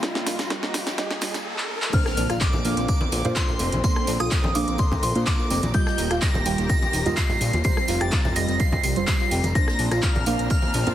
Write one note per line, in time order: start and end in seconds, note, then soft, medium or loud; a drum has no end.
0.00 1.44 F2 medium
0.00 1.44 C3 medium
0.00 1.42 G3 medium
0.00 0.10 G3 loud
0.00 0.49 G3 loud
0.00 1.42 F4 medium
0.00 0.49 F4 medium
0.00 0.49 D#5 loud
0.00 1.46 A#5 medium
0.00 kick loud
0.00 snare medium
0.00 closed hi-hat medium
0.00 tambourine soft
0.00 riser medium
0.15 0.19 A#3 loud
0.15 snare medium
0.15 closed hi-hat soft
0.27 0.34 A#3 medium
0.27 snare medium
0.27 open hi-hat loud
0.27 tambourine medium
0.39 snare medium
0.39 closed hi-hat medium
0.39 tambourine medium
0.50 0.58 G3 loud
0.50 0.96 G3 medium
0.50 0.96 F4 medium
0.50 0.96 D#5 loud
0.50 kick loud
0.50 snare medium
0.50 closed hi-hat medium
0.50 tambourine soft
0.63 0.67 A#3 loud
0.63 snare medium
0.74 0.82 A#3 medium
0.74 snare loud
0.74 open hi-hat loud
0.74 tambourine medium
0.87 snare medium
0.87 closed hi-hat soft
0.87 tambourine medium
0.98 1.20 G3 medium
0.98 1.05 G3 loud
0.98 1.20 F4 medium
0.98 1.20 D#5 loud
0.98 kick loud
0.98 snare loud
0.98 closed hi-hat medium
0.98 tambourine soft
1.11 1.15 A#3 loud
1.11 kick medium
1.11 snare medium
1.11 closed hi-hat soft
1.21 1.29 G3 loud
1.21 1.44 G3 loud
1.21 1.44 F4 medium
1.21 1.44 D#5 loud
1.21 snare loud
1.21 open hi-hat loud
1.21 tambourine loud
1.34 1.38 A#3 loud
1.34 snare medium
1.34 closed hi-hat soft
1.34 tambourine medium
1.58 clap medium
1.82 clap loud
1.93 5.70 D3 medium
1.93 2.62 A#3 loud
1.93 7.61 A#3 medium
1.93 1.98 A#3 medium
1.93 5.71 C4 medium
1.93 2.62 D4 medium
1.93 1.98 A#4 medium
1.93 2.62 C5 loud
1.93 10.95 A#5 medium
1.93 2.43 F6 loud
1.93 kick loud
1.93 closed hi-hat medium
1.93 crash loud
1.93 ride medium
1.93 tambourine soft
1.93 impact medium
2.06 2.12 C4 medium
2.06 2.12 C5 medium
2.06 cross-stick medium
2.06 snare medium
2.06 tambourine soft
2.17 2.28 A#1 loud
2.17 2.24 D4 loud
2.17 2.24 D5 medium
2.17 snare soft
2.17 open hi-hat loud
2.17 ride medium
2.17 tambourine medium
2.30 2.39 A#1 medium
2.30 2.36 F4 loud
2.30 2.36 F5 medium
2.30 cross-stick medium
2.30 closed hi-hat medium
2.30 tambourine soft
2.41 2.88 D6 medium
2.41 2.88 D6 loud
2.41 kick loud
2.41 snare loud
2.41 clap loud
2.41 closed hi-hat medium
2.41 ride medium
2.41 tambourine medium
2.53 2.63 A#1 medium
2.53 tambourine soft
2.53 high conga medium
2.53 low conga medium
2.65 2.75 A#1 loud
2.65 3.22 A#3 medium
2.65 2.72 A#3 medium
2.65 3.22 D4 medium
2.65 2.72 A#4 medium
2.65 3.22 F5 loud
2.65 open hi-hat loud
2.65 ride medium
2.65 tambourine medium
2.77 2.87 A#1 medium
2.77 2.84 C4 medium
2.77 2.84 C5 medium
2.77 closed hi-hat medium
2.77 tambourine soft
2.88 2.93 D4 medium
2.88 2.93 D5 medium
2.88 3.38 D6 loud
2.88 3.38 D6 medium
2.88 kick loud
2.88 closed hi-hat medium
2.88 ride medium
2.88 tambourine medium
3.01 tambourine soft
3.01 high conga loud
3.12 3.23 A#1 medium
3.12 open hi-hat loud
3.12 ride medium
3.12 tambourine medium
3.25 3.34 A#2 medium
3.25 3.81 A#3 medium
3.25 3.81 D4 medium
3.25 3.31 F4 loud
3.25 3.81 C5 medium
3.25 3.31 F5 medium
3.25 closed hi-hat medium
3.25 tambourine soft
3.25 low conga loud
3.36 3.81 C6 medium
3.36 kick loud
3.36 snare loud
3.36 clap loud
3.36 closed hi-hat medium
3.36 ride medium
3.36 tambourine soft
3.49 3.55 A#3 medium
3.49 3.55 A#4 medium
3.49 tambourine soft
3.49 low conga medium
3.59 3.70 F1 loud
3.59 3.64 C4 medium
3.59 3.64 C5 medium
3.59 open hi-hat loud
3.59 ride medium
3.59 tambourine medium
3.72 3.82 A#1 medium
3.72 closed hi-hat medium
3.72 tambourine soft
3.72 high conga medium
3.84 3.88 A#3 medium
3.84 4.53 A#3 loud
3.84 4.53 D4 medium
3.84 3.88 A#4 medium
3.84 4.53 C5 loud
3.84 4.21 C6 loud
3.84 kick loud
3.84 closed hi-hat medium
3.84 ride medium
3.84 tambourine medium
3.96 4.03 C4 medium
3.96 4.03 C5 medium
3.96 cross-stick medium
3.96 tambourine soft
4.07 4.18 A#1 medium
4.07 4.15 D4 loud
4.07 4.15 D5 medium
4.07 snare soft
4.07 open hi-hat loud
4.07 ride medium
4.07 tambourine loud
4.20 4.29 A#1 medium
4.20 4.27 F4 loud
4.20 4.27 F5 medium
4.20 4.56 D#6 loud
4.20 cross-stick medium
4.20 closed hi-hat medium
4.20 tambourine soft
4.31 kick loud
4.31 snare loud
4.31 clap loud
4.31 closed hi-hat medium
4.31 ride medium
4.31 tambourine medium
4.43 4.53 A#1 medium
4.43 ride soft
4.43 tambourine soft
4.43 high conga medium
4.43 low conga medium
4.55 4.66 A#1 medium
4.55 5.13 A#3 medium
4.55 4.63 A#3 medium
4.55 5.13 D4 medium
4.55 4.63 A#4 medium
4.55 5.13 F5 loud
4.55 4.80 D6 medium
4.55 4.80 D6 loud
4.55 open hi-hat loud
4.55 ride medium
4.55 tambourine medium
4.67 4.77 A#1 medium
4.67 4.74 C4 medium
4.67 4.74 C5 medium
4.67 closed hi-hat medium
4.67 tambourine soft
4.78 4.83 D4 medium
4.78 4.83 D5 medium
4.78 4.90 C6 loud
4.78 4.90 C6 medium
4.78 kick loud
4.78 closed hi-hat medium
4.78 ride medium
4.78 tambourine medium
4.92 kick medium
4.92 tambourine soft
4.92 high conga loud
4.92 low conga medium
5.02 5.13 A#1 medium
5.02 5.27 C6 medium
5.02 5.28 C6 medium
5.02 open hi-hat loud
5.02 ride medium
5.02 tambourine medium
5.15 5.25 A#2 medium
5.15 5.72 A#3 medium
5.15 5.72 D4 medium
5.15 5.22 F4 loud
5.15 5.72 C5 medium
5.15 5.22 F5 medium
5.15 closed hi-hat medium
5.15 tambourine soft
5.26 5.61 D6 loud
5.26 kick loud
5.26 snare loud
5.26 clap loud
5.26 closed hi-hat medium
5.26 ride medium
5.26 tambourine medium
5.39 5.46 A#3 medium
5.39 5.46 A#4 medium
5.39 tambourine soft
5.50 5.61 F1 loud
5.50 5.55 C4 medium
5.50 5.55 C5 medium
5.50 snare medium
5.50 open hi-hat loud
5.50 ride medium
5.50 tambourine medium
5.63 5.72 A#1 medium
5.63 closed hi-hat medium
5.63 ride soft
5.63 tambourine soft
5.63 high conga medium
5.74 7.63 D#3 medium
5.74 6.43 G3 loud
5.74 5.79 G3 medium
5.74 6.43 F4 medium
5.74 9.51 F4 medium
5.74 7.63 G4 medium
5.74 5.79 G4 medium
5.74 6.43 D#5 loud
5.74 6.23 G6 loud
5.74 kick loud
5.74 closed hi-hat medium
5.74 ride medium
5.74 tambourine medium
5.87 5.94 A#3 medium
5.87 5.94 A#4 medium
5.87 cross-stick medium
5.87 snare medium
5.87 tambourine soft
5.97 6.09 D#1 loud
5.97 6.05 D#4 loud
5.97 6.05 D#5 medium
5.97 snare soft
5.97 open hi-hat loud
5.97 ride medium
5.97 tambourine medium
6.11 6.20 D#1 medium
6.11 6.17 F4 loud
6.11 6.17 F5 medium
6.11 cross-stick medium
6.11 closed hi-hat medium
6.11 tambourine soft
6.21 6.68 A#6 loud
6.21 6.69 A#6 loud
6.21 kick loud
6.21 snare loud
6.21 clap loud
6.21 closed hi-hat soft
6.21 ride medium
6.21 tambourine medium
6.34 6.44 D#1 medium
6.34 tambourine soft
6.34 high conga medium
6.34 low conga medium
6.45 6.56 D#1 medium
6.45 7.03 G3 medium
6.45 6.53 G3 medium
6.45 7.03 F4 medium
6.45 6.53 G4 medium
6.45 7.03 G5 loud
6.45 open hi-hat loud
6.45 ride medium
6.45 tambourine loud
6.58 6.68 D#1 medium
6.58 6.65 A#3 medium
6.58 6.65 A#4 medium
6.58 closed hi-hat medium
6.58 tambourine soft
6.69 6.74 D#4 medium
6.69 6.74 D#5 medium
6.69 7.19 A#6 loud
6.69 kick loud
6.69 closed hi-hat medium
6.69 ride medium
6.69 tambourine medium
6.82 tambourine soft
6.82 high conga medium
6.93 7.04 D#1 medium
6.93 open hi-hat loud
6.93 ride medium
6.93 tambourine loud
7.06 7.15 D#2 medium
7.06 7.62 G3 medium
7.06 7.62 F4 medium
7.06 7.13 F4 loud
7.06 7.62 D#5 medium
7.06 7.13 F5 medium
7.06 closed hi-hat medium
7.06 tambourine soft
7.06 low conga medium
7.16 7.63 C7 loud
7.16 7.64 C7 loud
7.16 kick loud
7.16 snare loud
7.16 clap loud
7.16 closed hi-hat medium
7.16 ride medium
7.16 tambourine medium
7.29 7.36 G3 medium
7.29 7.36 G4 medium
7.29 tambourine soft
7.29 low conga medium
7.41 7.51 A#1 medium
7.41 7.45 A#3 medium
7.41 7.45 A#4 medium
7.41 open hi-hat loud
7.41 ride medium
7.41 tambourine medium
7.53 7.63 D#1 medium
7.53 closed hi-hat medium
7.53 tambourine soft
7.53 high conga medium
7.64 8.33 G3 loud
7.64 9.53 G3 medium
7.64 7.69 G3 medium
7.64 9.53 C4 medium
7.64 8.33 F4 medium
7.64 7.69 G4 medium
7.64 8.33 C5 loud
7.64 8.02 C7 loud
7.64 kick loud
7.64 closed hi-hat medium
7.64 ride medium
7.64 tambourine medium
7.77 7.84 C4 medium
7.77 7.84 C5 medium
7.77 cross-stick medium
7.77 tambourine soft
7.88 7.99 F1 medium
7.88 7.96 F4 loud
7.88 7.96 F5 medium
7.88 snare soft
7.88 open hi-hat loud
7.88 ride medium
7.88 tambourine loud
8.01 8.10 F1 medium
8.01 8.08 G4 loud
8.01 8.08 G5 medium
8.01 8.37 A6 loud
8.01 cross-stick medium
8.01 closed hi-hat medium
8.01 tambourine soft
8.12 kick loud
8.12 snare loud
8.12 clap loud
8.12 closed hi-hat soft
8.12 ride medium
8.12 tambourine medium
8.25 8.34 F1 medium
8.25 ride soft
8.25 tambourine soft
8.25 high conga medium
8.25 low conga medium
8.35 8.47 F1 loud
8.35 8.94 G3 loud
8.35 8.44 G3 medium
8.35 8.94 F4 medium
8.35 8.43 G4 medium
8.35 8.94 D#5 loud
8.35 8.61 A#6 loud
8.35 open hi-hat loud
8.35 ride medium
8.35 tambourine loud
8.48 8.58 F1 medium
8.48 8.55 C4 medium
8.48 8.55 C5 medium
8.48 closed hi-hat medium
8.48 tambourine soft
8.59 8.64 F4 medium
8.59 8.64 F5 medium
8.59 8.83 C7 loud
8.59 kick loud
8.59 closed hi-hat medium
8.59 ride medium
8.59 tambourine medium
8.72 kick medium
8.72 tambourine soft
8.72 high conga loud
8.72 low conga medium
8.83 8.98 C2 medium
8.83 8.91 G3 loud
8.83 8.91 G4 medium
8.83 9.07 C7 loud
8.83 9.06 C7 loud
8.83 open hi-hat loud
8.83 ride medium
8.83 tambourine medium
8.96 9.06 F1 medium
8.96 9.52 G3 medium
8.96 9.52 F4 medium
8.96 9.52 C5 medium
8.96 closed hi-hat medium
8.96 tambourine soft
9.07 9.15 G3 loud
9.07 9.15 G4 medium
9.07 9.41 C7 loud
9.07 kick loud
9.07 snare loud
9.07 clap loud
9.07 closed hi-hat soft
9.07 ride medium
9.07 tambourine medium
9.19 9.24 F4 medium
9.19 9.24 F5 medium
9.19 tambourine soft
9.31 9.42 F1 medium
9.31 9.36 G4 medium
9.31 9.36 G5 medium
9.31 snare medium
9.31 open hi-hat loud
9.31 ride medium
9.31 tambourine loud
9.43 9.53 F1 medium
9.43 closed hi-hat medium
9.43 ride soft
9.43 tambourine soft
9.43 high conga medium
9.55 10.24 A#3 loud
9.55 9.60 A#3 medium
9.55 10.95 A#3 medium
9.55 10.95 C4 medium
9.55 10.24 D4 medium
9.55 10.95 D4 medium
9.55 9.60 A#4 medium
9.55 10.24 C5 loud
9.55 10.04 A#6 loud
9.55 kick loud
9.55 closed hi-hat medium
9.55 ride medium
9.55 tambourine soft
9.68 cross-stick medium
9.68 snare medium
9.68 tambourine soft
9.79 9.89 A#1 medium
9.79 9.86 D4 loud
9.79 9.86 D5 medium
9.79 snare soft
9.79 open hi-hat loud
9.79 ride medium
9.79 tambourine medium
9.91 10.01 A#1 medium
9.91 9.98 F4 loud
9.91 9.98 F5 medium
9.91 cross-stick medium
9.91 closed hi-hat medium
9.91 tambourine soft
10.02 10.50 F6 loud
10.02 10.49 F6 loud
10.02 kick loud
10.02 snare loud
10.02 clap loud
10.02 closed hi-hat medium
10.02 ride medium
10.02 tambourine soft
10.15 10.25 A#1 medium
10.15 tambourine soft
10.15 high conga medium
10.15 low conga medium
10.26 10.37 A#1 loud
10.26 10.84 A#3 medium
10.26 10.34 A#3 medium
10.26 10.84 D4 medium
10.26 10.34 A#4 medium
10.26 10.84 F5 loud
10.26 open hi-hat loud
10.26 ride medium
10.26 tambourine medium
10.39 10.49 A#1 medium
10.39 10.46 C4 medium
10.39 10.46 C5 medium
10.39 closed hi-hat medium
10.39 tambourine soft
10.50 10.55 D4 medium
10.50 10.55 D5 medium
10.50 10.95 F6 loud
10.50 kick loud
10.50 closed hi-hat soft
10.50 ride medium
10.50 tambourine medium
10.62 tambourine soft
10.62 high conga medium
10.74 10.85 A#1 medium
10.74 10.82 C4 medium
10.74 10.82 C5 medium
10.74 open hi-hat loud
10.74 ride medium
10.74 tambourine medium
10.86 10.95 A#2 medium
10.86 10.95 A#3 medium
10.86 10.95 D4 medium
10.86 10.93 F4 loud
10.86 10.95 C5 medium
10.86 10.93 F5 medium
10.86 closed hi-hat medium
10.86 tambourine soft
10.86 low conga medium